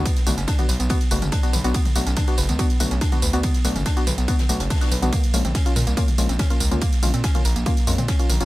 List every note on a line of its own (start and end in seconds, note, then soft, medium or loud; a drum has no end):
0.05 0.11 B3 loud
0.05 kick loud
0.05 closed hi-hat medium
0.05 ride medium
0.05 tambourine soft
0.17 snare medium
0.17 closed hi-hat medium
0.17 tambourine soft
0.27 0.36 B1 loud
0.27 0.30 A3 medium
0.27 0.35 B3 medium
0.27 0.35 D4 medium
0.27 0.35 F#4 loud
0.27 closed hi-hat medium
0.27 open hi-hat loud
0.27 mid tom medium
0.27 tambourine medium
0.38 0.46 F#1 medium
0.38 0.45 C#4 medium
0.38 closed hi-hat soft
0.38 tambourine soft
0.47 0.55 D4 loud
0.47 kick loud
0.47 snare loud
0.47 closed hi-hat medium
0.47 ride medium
0.47 tambourine soft
0.59 0.66 B3 loud
0.59 0.66 D4 medium
0.59 0.66 F#4 loud
0.59 closed hi-hat medium
0.59 mid tom medium
0.59 tambourine soft
0.69 0.78 B1 medium
0.69 0.76 B4 medium
0.69 closed hi-hat medium
0.69 open hi-hat medium
0.69 tambourine medium
0.80 0.88 B1 medium
0.80 0.87 B3 medium
0.80 closed hi-hat medium
0.80 tambourine soft
0.89 0.95 B3 loud
0.89 0.98 B3 medium
0.89 0.98 D4 medium
0.89 0.98 F#4 loud
0.89 kick loud
0.89 closed hi-hat medium
0.89 mid tom medium
0.89 ride medium
0.89 tambourine soft
1.01 snare soft
1.01 closed hi-hat soft
1.01 tambourine soft
1.11 1.20 F#1 loud
1.11 1.14 A3 medium
1.11 1.24 B3 medium
1.11 1.24 D4 medium
1.11 1.24 F#4 medium
1.11 closed hi-hat medium
1.11 open hi-hat loud
1.11 tambourine medium
1.22 1.31 F#1 medium
1.22 1.29 C#4 medium
1.22 closed hi-hat medium
1.22 mid tom medium
1.22 tambourine soft
1.32 1.40 D4 loud
1.32 kick loud
1.32 snare loud
1.32 closed hi-hat medium
1.32 ride medium
1.32 tambourine soft
1.43 1.55 B3 medium
1.43 1.55 D4 medium
1.43 1.55 F#4 medium
1.43 closed hi-hat soft
1.43 tambourine soft
1.53 1.63 B1 medium
1.53 1.61 B4 medium
1.53 closed hi-hat medium
1.53 open hi-hat medium
1.53 mid tom medium
1.53 tambourine medium
1.64 1.73 B1 medium
1.64 1.71 B3 medium
1.64 1.76 B3 medium
1.64 1.76 D4 medium
1.64 1.76 F#4 loud
1.64 snare medium
1.64 closed hi-hat medium
1.64 tambourine soft
1.74 1.80 B3 loud
1.74 kick loud
1.74 closed hi-hat medium
1.74 ride medium
1.74 tambourine soft
1.85 closed hi-hat medium
1.85 mid tom medium
1.85 tambourine soft
1.96 2.05 B1 medium
1.96 1.99 A3 medium
1.96 2.04 B3 medium
1.96 2.04 D4 medium
1.96 2.04 F#4 loud
1.96 closed hi-hat medium
1.96 open hi-hat loud
1.96 tambourine medium
2.06 2.15 B1 medium
2.06 2.14 C#4 medium
2.06 snare soft
2.06 closed hi-hat medium
2.06 tambourine soft
2.16 2.24 D4 loud
2.16 kick loud
2.16 snare loud
2.16 closed hi-hat medium
2.16 mid tom medium
2.16 ride medium
2.16 tambourine soft
2.28 2.35 B3 loud
2.28 2.35 D4 medium
2.28 2.35 F#4 loud
2.28 closed hi-hat medium
2.28 tambourine soft
2.37 2.47 F#1 medium
2.37 2.45 B4 medium
2.37 closed hi-hat medium
2.37 open hi-hat medium
2.37 tambourine medium
2.49 2.57 C#2 medium
2.49 2.56 B3 medium
2.49 closed hi-hat medium
2.49 mid tom medium
2.49 tambourine soft
2.59 2.64 B3 loud
2.59 2.67 B3 loud
2.59 2.67 D4 medium
2.59 2.67 F#4 loud
2.59 kick loud
2.59 closed hi-hat medium
2.59 ride medium
2.59 tambourine soft
2.70 closed hi-hat medium
2.70 tambourine soft
2.80 2.89 B1 loud
2.80 2.83 A3 medium
2.80 2.93 B3 medium
2.80 2.93 D4 medium
2.80 2.93 F#4 loud
2.80 closed hi-hat medium
2.80 open hi-hat loud
2.80 mid tom medium
2.80 tambourine medium
2.90 3.00 B1 medium
2.90 2.98 C#4 medium
2.90 snare soft
2.90 closed hi-hat soft
2.90 tambourine soft
3.01 3.09 D4 loud
3.01 kick loud
3.01 snare loud
3.01 closed hi-hat medium
3.01 ride medium
3.01 tambourine soft
3.12 3.24 B3 medium
3.12 3.24 D4 medium
3.12 3.24 F#4 medium
3.12 snare soft
3.12 closed hi-hat medium
3.12 mid tom medium
3.12 tambourine soft
3.22 3.32 D2 medium
3.22 3.30 B4 medium
3.22 closed hi-hat medium
3.22 open hi-hat medium
3.22 tambourine medium
3.33 3.42 D2 medium
3.33 3.40 B3 medium
3.33 3.46 B3 medium
3.33 3.45 D4 medium
3.33 3.46 F#4 loud
3.33 closed hi-hat medium
3.33 tambourine soft
3.43 3.49 B3 loud
3.43 kick loud
3.43 closed hi-hat medium
3.43 mid tom medium
3.43 ride medium
3.43 tambourine soft
3.54 snare medium
3.54 closed hi-hat medium
3.54 tambourine soft
3.65 3.74 B1 medium
3.65 3.68 A3 medium
3.65 3.73 B3 loud
3.65 3.73 D4 medium
3.65 3.73 F#4 loud
3.65 closed hi-hat medium
3.65 open hi-hat loud
3.65 tambourine medium
3.76 3.84 F#1 medium
3.76 3.83 C#4 medium
3.76 closed hi-hat medium
3.76 mid tom medium
3.76 tambourine soft
3.86 3.93 D4 loud
3.86 kick loud
3.86 snare loud
3.86 closed hi-hat medium
3.86 ride medium
3.86 tambourine soft
3.97 4.04 B3 loud
3.97 4.04 D4 medium
3.97 4.04 F#4 loud
3.97 closed hi-hat medium
3.97 tambourine soft
4.07 4.16 B1 medium
4.07 4.15 B4 medium
4.07 snare loud
4.07 closed hi-hat medium
4.07 open hi-hat medium
4.07 mid tom medium
4.07 tambourine medium
4.18 4.26 B1 medium
4.18 4.25 B3 medium
4.18 snare soft
4.18 closed hi-hat medium
4.18 tambourine soft
4.28 4.36 B3 loud
4.28 4.33 B3 loud
4.28 4.36 D4 medium
4.28 4.36 F#4 loud
4.28 kick loud
4.28 closed hi-hat medium
4.28 ride medium
4.28 tambourine soft
4.39 snare loud
4.39 closed hi-hat medium
4.39 mid tom medium
4.39 tambourine soft
4.49 4.58 B1 loud
4.49 4.52 A3 medium
4.49 4.62 B3 medium
4.49 4.62 D4 medium
4.49 4.62 F#4 loud
4.49 open hi-hat loud
4.49 tambourine medium
4.60 4.69 F#1 medium
4.60 4.67 C#4 medium
4.60 closed hi-hat medium
4.60 tambourine soft
4.70 4.78 D4 loud
4.70 kick loud
4.70 snare medium
4.70 closed hi-hat medium
4.70 mid tom medium
4.70 ride medium
4.70 tambourine soft
4.76 snare medium
4.76 closed hi-hat medium
4.81 4.93 B3 medium
4.81 4.93 D4 medium
4.81 4.93 F#4 medium
4.81 snare medium
4.81 closed hi-hat medium
4.81 tambourine soft
4.86 snare medium
4.86 closed hi-hat medium
4.91 5.01 B1 loud
4.91 4.99 B4 medium
4.91 closed hi-hat medium
4.91 open hi-hat medium
4.91 tambourine medium
5.02 5.11 B1 medium
5.02 5.11 B3 medium
5.02 5.09 B3 medium
5.02 5.11 D4 medium
5.02 5.11 F#4 loud
5.02 closed hi-hat medium
5.02 mid tom medium
5.02 tambourine soft
5.13 5.18 A#3 loud
5.13 kick loud
5.13 closed hi-hat medium
5.13 mid tom medium
5.13 ride medium
5.13 tambourine soft
5.24 closed hi-hat medium
5.24 tambourine soft
5.33 5.43 A#1 loud
5.33 5.37 G#3 medium
5.33 5.42 A#3 loud
5.33 5.42 C#4 medium
5.33 5.42 F4 loud
5.33 closed hi-hat medium
5.33 open hi-hat loud
5.33 tambourine medium
5.45 5.53 A#1 medium
5.45 5.52 C4 medium
5.45 snare soft
5.45 closed hi-hat medium
5.45 mid tom medium
5.45 tambourine soft
5.55 5.62 C#4 loud
5.55 kick loud
5.55 snare loud
5.55 closed hi-hat medium
5.55 ride medium
5.55 tambourine soft
5.66 5.73 A#3 loud
5.66 5.73 C#4 medium
5.66 5.73 F4 loud
5.66 closed hi-hat medium
5.66 tambourine soft
5.76 5.85 A#2 medium
5.76 5.84 A#4 medium
5.76 closed hi-hat medium
5.76 open hi-hat medium
5.76 mid tom medium
5.76 tambourine medium
5.87 5.95 C2 medium
5.87 5.94 A#3 medium
5.87 closed hi-hat medium
5.87 tambourine soft
5.97 6.02 A#3 loud
5.97 6.05 A#3 medium
5.97 6.05 C#4 medium
5.97 6.05 F4 loud
5.97 kick loud
5.97 closed hi-hat medium
5.97 ride medium
5.97 tambourine soft
6.08 closed hi-hat medium
6.08 mid tom medium
6.08 tambourine soft
6.18 6.27 A#1 loud
6.18 6.21 G#3 medium
6.18 6.31 A#3 medium
6.18 6.31 C#4 medium
6.18 6.31 F4 medium
6.18 closed hi-hat medium
6.18 open hi-hat loud
6.18 tambourine medium
6.29 6.38 A#1 medium
6.29 6.36 C4 medium
6.29 snare soft
6.29 closed hi-hat medium
6.29 tambourine soft
6.39 6.47 C#4 loud
6.39 kick loud
6.39 snare loud
6.39 closed hi-hat loud
6.39 closed hi-hat medium
6.39 mid tom medium
6.39 ride medium
6.39 tambourine soft
6.50 6.62 A#3 medium
6.50 6.62 C#4 medium
6.50 6.62 F4 medium
6.50 snare soft
6.50 closed hi-hat medium
6.50 tambourine soft
6.60 6.70 C#2 loud
6.60 6.68 A#4 medium
6.60 closed hi-hat medium
6.60 open hi-hat loud
6.60 tambourine medium
6.71 6.80 C#2 medium
6.71 6.78 A#3 medium
6.71 6.84 A#3 medium
6.71 6.84 C#4 medium
6.71 6.84 F4 loud
6.71 closed hi-hat medium
6.71 mid tom medium
6.71 tambourine soft
6.81 6.87 A#3 loud
6.81 kick loud
6.81 closed hi-hat medium
6.81 ride medium
6.81 tambourine soft
6.92 snare medium
6.92 closed hi-hat medium
6.92 tambourine soft
7.03 7.12 A#1 loud
7.03 7.06 G#3 medium
7.03 7.11 A#3 medium
7.03 7.11 C#4 medium
7.03 7.11 F4 loud
7.03 closed hi-hat medium
7.03 open hi-hat loud
7.03 mid tom medium
7.03 tambourine medium
7.14 7.22 A#2 medium
7.14 7.21 C4 medium
7.14 closed hi-hat medium
7.14 tambourine soft
7.24 7.31 C#4 loud
7.24 kick loud
7.24 snare loud
7.24 closed hi-hat medium
7.24 ride medium
7.24 tambourine soft
7.35 7.42 A#3 medium
7.35 7.42 C#4 medium
7.35 7.42 F4 loud
7.35 closed hi-hat medium
7.35 mid tom medium
7.35 tambourine soft
7.45 7.54 A#1 loud
7.45 7.53 A#4 medium
7.45 closed hi-hat medium
7.45 open hi-hat medium
7.45 tambourine medium
7.56 7.64 A#1 medium
7.56 7.63 A#3 medium
7.56 closed hi-hat medium
7.56 tambourine soft
7.66 7.71 A#3 loud
7.66 7.74 A#3 loud
7.66 7.74 C#4 medium
7.66 7.74 F4 loud
7.66 kick loud
7.66 closed hi-hat medium
7.66 mid tom medium
7.66 ride medium
7.66 tambourine soft
7.77 snare soft
7.77 closed hi-hat medium
7.77 tambourine soft
7.87 7.96 F2 loud
7.87 7.90 G#3 medium
7.87 8.00 A#3 medium
7.87 8.00 C#4 medium
7.87 8.00 F4 medium
7.87 closed hi-hat medium
7.87 open hi-hat loud
7.87 tambourine medium
7.98 8.07 A#2 medium
7.98 8.05 C4 medium
7.98 closed hi-hat medium
7.98 mid tom medium
7.98 tambourine soft
8.08 8.16 C#4 loud
8.08 kick loud
8.08 snare loud
8.08 closed hi-hat medium
8.08 ride medium
8.08 tambourine soft
8.19 8.31 A#3 medium
8.19 8.31 C#4 medium
8.19 8.31 F4 medium
8.19 closed hi-hat medium
8.19 tambourine soft
8.29 8.39 A#1 medium
8.29 8.37 A#4 medium
8.29 closed hi-hat medium
8.29 open hi-hat medium
8.29 mid tom medium
8.29 tambourine medium
8.40 8.45 A#1 medium
8.40 8.45 A#3 medium
8.40 8.45 C#4 medium
8.40 8.45 F4 loud
8.40 snare medium
8.40 closed hi-hat medium
8.40 tambourine soft